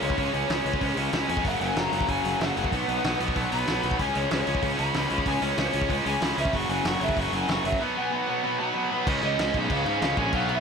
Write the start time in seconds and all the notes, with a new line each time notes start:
0.02 C#2 C#3 G#3 C#4 C#5, open hi-hat
0.10 kick
0.17 C#2 C#3 G#3 C#4, kick, open hi-hat
0.33 C#2 C#3 G#3 C#4, open hi-hat
0.48 C#2 C#3 G#3 C#4, snare, open hi-hat
0.64 C#2 C#3 G#3 C#4, open hi-hat
0.74 kick
0.80 C#2 C#3 G#3 C#4, kick, open hi-hat
0.96 C#2 C#3 G#3 C#4, open hi-hat
1.11 C#2 C#3 G#3 C#4, snare, open hi-hat
1.28 F2 C#3 G#3 C#4 G#5, open hi-hat
1.37 kick
1.44 F#1 F#2 C#3 F#3 F#5, kick, open hi-hat
1.61 F#1 F#2 C#3 F#3 G#5, open hi-hat
1.76 F#1 F#2 C#3 F#3 A#5, snare, open hi-hat
1.93 F#1 F#2 C#3 F#3, open hi-hat
2.01 kick
2.08 F#1 F#2 C#3 F#3 G#5, kick, open hi-hat
2.24 F#1 F#2 C#3 F#3, open hi-hat
2.40 F#1 F#2 C#3 F#3 F#5, snare, open hi-hat
2.56 F#1 F#2 C#3 F#3 F#5, open hi-hat
2.64 kick
2.72 B1 B2 F#3 B3, kick, open hi-hat
2.88 B1 B2 F#3 B3, open hi-hat
3.03 B1 B2 F#3 B3, snare, open hi-hat
3.20 B1 B2 F#3 B3, open hi-hat
3.28 kick
3.36 B1 B2 F#3 B3, kick, open hi-hat
3.51 B1 B2 F#3 B3 B5, open hi-hat
3.66 B1 B2 F#3 B3, snare, open hi-hat
3.83 B1 B2 F#3 B3, open hi-hat
3.91 kick
3.99 C#2 C#3 G#3 C#4 G#5, kick, open hi-hat
4.14 C#2 C#3 G#3 C#4 C#5, open hi-hat
4.30 C#2 C#3 G#3 C#4 C#5, snare, open hi-hat
4.46 C#2 C#3 G#3 C#4, open hi-hat
4.55 kick
4.62 C#2 C#3 G#3 C#4, kick, open hi-hat
4.77 C#2 C#3 G#3 C#4 B5, open hi-hat
4.94 C#2 C#3 G#3 C#4, snare, open hi-hat
5.09 C#2 C#3 G#3 C#4, open hi-hat
5.18 kick
5.26 C#2 C#3 G#3 C#4 G#5, kick, open hi-hat
5.42 C#2 C#3 G#3 C#4 C#5, open hi-hat
5.57 C#2 C#3 G#3 C#4 C#5, snare, open hi-hat
5.72 C#2 C#3 G#3 C#4, open hi-hat
5.82 kick
5.89 C#2 C#3 G#3 C#4, kick, open hi-hat
6.05 C#2 C#3 G#3 C#4 G#5, open hi-hat
6.20 C#2 C#3 G#3 C#4 B5, snare, open hi-hat
6.36 C#2 C#3 G#3 C#4 E5, open hi-hat
6.45 kick
6.52 F#1 F#2 C#3 F#3 C#6, kick, open hi-hat
6.68 F#1 F#2 C#3 F#3 G#5, open hi-hat
6.84 F#1 F#2 C#3 F#3 C#6, snare, open hi-hat
7.00 F#1 F#2 C#3 F#3 E5, open hi-hat
7.09 kick
7.17 F#1 F#2 C#3 F#3 C#6, kick, open hi-hat
7.33 F#1 F#2 C#3 F#3 G#5, open hi-hat
7.48 F#1 F#2 C#3 F#3 C#6, snare, open hi-hat
7.64 F#1 F#2 C#3 F#3 E5, open hi-hat
7.72 kick
7.79 B2 F#3 B3 B5
7.96 B2 F#3 B3 G#5
8.11 B2 F#3 B3 B5
8.27 B2 F#3 B3 F#5
8.43 B2 F#3 B3 B5
8.60 B2 F#3 B3 B5
8.74 B2 F#3 B3
8.91 B2 F#3 B3
9.06 C#2 C#3 G#3 C#4, kick, crash
9.22 C#2 C#3 G#3 C#4 D#5, crash
9.38 C#2 C#3 G#3 C#4, snare, crash
9.54 B1 C#3 G#3 C#4, kick, crash
9.70 C#2 C#3 G#3 C#4 F5, kick, crash
9.85 G#2 C#3 G#3 C#4, crash
10.01 C#2 C#3 G#3 C#4 F5, snare, crash
10.17 A#1 C#3 G#3 C#4 G#5, kick, crash
10.32 B1 B2 F#3 B3 F5, kick, crash
10.48 B2 F#3 B3 D#5, crash